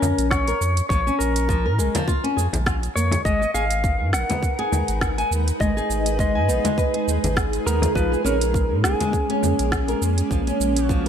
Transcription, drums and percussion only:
0.02 frame drum, cabasa
0.18 closed hi-hat, cabasa
0.31 kick, snare, cabasa
0.47 closed hi-hat, cabasa
0.62 cabasa
0.77 closed hi-hat, cabasa
0.90 kick, cabasa
1.07 cabasa
1.21 cabasa
1.36 closed hi-hat, cabasa
1.49 kick, cabasa
1.79 cabasa
1.95 closed hi-hat, frame drum, cabasa
2.08 kick, cabasa
2.24 closed hi-hat
2.38 cabasa
2.53 closed hi-hat, frame drum, cabasa
2.66 kick, snare, cabasa
2.83 closed hi-hat, cabasa
2.97 cabasa
3.11 closed hi-hat, frame drum, cabasa
3.25 kick, cabasa
3.42 cabasa
3.55 cabasa
3.71 closed hi-hat, cabasa
3.84 kick, cabasa
4.13 snare, cabasa
4.30 closed hi-hat, frame drum, cabasa
4.43 kick, cabasa
4.59 closed hi-hat
4.72 frame drum, cabasa
4.88 closed hi-hat, cabasa
5.01 kick, snare, cabasa
5.18 closed hi-hat, cabasa
5.32 cabasa
5.48 closed hi-hat, cabasa
5.60 kick, cabasa
5.78 cabasa
5.90 cabasa
6.06 closed hi-hat, cabasa
6.19 kick, cabasa
6.49 cabasa
6.65 closed hi-hat, frame drum, cabasa
6.78 kick, cabasa
6.94 closed hi-hat
7.08 cabasa
7.24 closed hi-hat, frame drum, cabasa
7.37 kick, snare, cabasa
7.53 closed hi-hat, cabasa
7.67 cabasa
7.82 closed hi-hat, frame drum, cabasa
7.95 kick, cabasa
8.13 cabasa
8.26 cabasa
8.41 closed hi-hat, cabasa
8.54 kick, cabasa
8.84 snare, cabasa
9.00 closed hi-hat, frame drum, cabasa
9.13 kick, cabasa
9.30 closed hi-hat
9.43 frame drum, cabasa
9.59 closed hi-hat, cabasa
9.72 kick, snare, cabasa
9.88 closed hi-hat, cabasa
10.02 cabasa
10.18 closed hi-hat, cabasa
10.31 kick, cabasa
10.47 closed hi-hat, cabasa
10.61 cabasa
10.76 closed hi-hat, cabasa
10.89 kick, cabasa

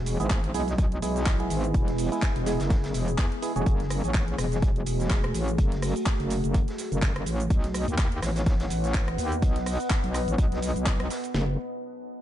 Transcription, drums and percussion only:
0.06 closed hi-hat, open hi-hat, shaker
0.20 closed hi-hat, shaker
0.29 kick, snare, clap, closed hi-hat, shaker
0.44 closed hi-hat
0.54 closed hi-hat, open hi-hat, shaker
0.68 snare, closed hi-hat, shaker
0.78 kick, closed hi-hat, shaker
0.92 closed hi-hat
1.02 closed hi-hat, open hi-hat, shaker
1.16 snare, closed hi-hat, shaker
1.26 kick, snare, clap, closed hi-hat, shaker
1.40 closed hi-hat
1.50 closed hi-hat, open hi-hat, shaker
1.64 closed hi-hat, shaker
1.74 kick, closed hi-hat, shaker
1.87 snare, closed hi-hat
1.98 open hi-hat, shaker
2.12 closed hi-hat, shaker
2.22 kick, snare, clap, closed hi-hat, shaker
2.36 closed hi-hat
2.46 snare, closed hi-hat, open hi-hat, shaker
2.59 snare, closed hi-hat, shaker
2.70 kick, snare, closed hi-hat, shaker
2.84 snare, closed hi-hat
2.94 snare, closed hi-hat, open hi-hat, shaker
3.08 closed hi-hat, shaker
3.18 kick, snare, clap, closed hi-hat, shaker
3.32 closed hi-hat
3.42 closed hi-hat, open hi-hat, shaker
3.56 closed hi-hat, shaker
3.66 kick, closed hi-hat, shaker
3.80 snare, closed hi-hat
3.90 cross-stick, closed hi-hat, open hi-hat, shaker
4.04 closed hi-hat, shaker
4.14 kick, snare, clap, closed hi-hat, shaker
4.28 closed hi-hat
4.38 cross-stick, closed hi-hat, open hi-hat, shaker
4.51 snare, closed hi-hat, shaker
4.62 kick, closed hi-hat, shaker
4.76 closed hi-hat
4.86 closed hi-hat, open hi-hat, shaker
5.00 snare, closed hi-hat, shaker
5.10 kick, snare, clap, closed hi-hat, shaker
5.24 cross-stick, closed hi-hat
5.34 closed hi-hat, open hi-hat, shaker
5.48 closed hi-hat, shaker
5.58 kick, closed hi-hat, shaker
5.72 snare, closed hi-hat
5.82 cross-stick, open hi-hat, shaker
5.96 closed hi-hat, shaker
6.06 kick, snare, clap, closed hi-hat, shaker
6.20 closed hi-hat
6.30 closed hi-hat, open hi-hat, shaker
6.44 closed hi-hat, shaker
6.54 kick, closed hi-hat, shaker
6.68 snare, closed hi-hat
6.78 snare, closed hi-hat, open hi-hat, shaker
6.92 closed hi-hat, shaker
7.02 kick, snare, clap, closed hi-hat, shaker
7.16 cross-stick, closed hi-hat
7.26 closed hi-hat, open hi-hat, shaker
7.40 closed hi-hat, shaker
7.50 kick, closed hi-hat, shaker
7.63 snare, closed hi-hat
7.74 cross-stick, closed hi-hat, open hi-hat, shaker
7.88 closed hi-hat, shaker
7.98 kick, snare, clap, closed hi-hat, shaker
8.12 closed hi-hat
8.22 cross-stick, snare, closed hi-hat, open hi-hat, shaker
8.36 snare, closed hi-hat, shaker
8.46 kick, snare, closed hi-hat, shaker
8.60 snare, closed hi-hat
8.70 closed hi-hat, open hi-hat, shaker
8.84 snare, closed hi-hat, shaker
8.94 kick, snare, clap, closed hi-hat, shaker
9.08 cross-stick, closed hi-hat
9.18 closed hi-hat, open hi-hat, shaker
9.32 closed hi-hat, shaker
9.42 kick, closed hi-hat, shaker
9.56 snare, closed hi-hat
9.66 cross-stick, open hi-hat, shaker
9.80 closed hi-hat, shaker
9.90 kick, snare, clap, closed hi-hat, shaker
10.03 closed hi-hat
10.14 cross-stick, closed hi-hat, open hi-hat, shaker
10.28 closed hi-hat, shaker
10.38 kick, closed hi-hat, shaker
10.52 snare, closed hi-hat
10.62 snare, closed hi-hat, open hi-hat, shaker
10.76 closed hi-hat, shaker
10.86 kick, snare, clap, closed hi-hat, shaker
11.00 cross-stick, closed hi-hat
11.10 snare, closed hi-hat, open hi-hat, shaker
11.23 closed hi-hat, shaker
11.34 snare

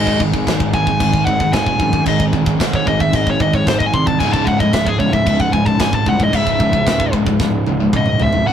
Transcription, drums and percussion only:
0.07 kick
0.20 kick
0.34 kick
0.47 kick, snare, china
0.60 kick
0.74 kick
0.87 kick
1.00 kick, china
1.13 kick
1.27 kick
1.40 kick
1.53 kick, snare, china
1.66 kick
1.80 kick
1.93 kick
2.06 kick, china
2.20 kick
2.33 kick
2.46 kick
2.60 kick, snare, china
2.73 kick
2.87 kick
3.00 kick
3.13 kick, china
3.27 kick
3.40 kick
3.54 kick
3.67 kick, snare, china
3.80 kick
3.94 kick
4.07 kick
4.20 kick, china
4.34 kick
4.47 kick
4.60 kick
4.73 kick, snare, china
4.87 kick
5.00 kick
5.13 kick
5.27 kick, china
5.40 kick
5.53 kick
5.66 kick
5.79 kick, snare, china
5.93 kick
6.06 kick
6.20 kick
6.33 kick, china
6.47 kick
6.60 kick
6.73 kick
6.87 kick, snare, china
7.00 kick
7.13 kick
7.26 kick
7.40 kick, snare
7.66 high tom
7.93 kick, mid tom
8.06 mid tom
8.20 floor tom
8.33 floor tom

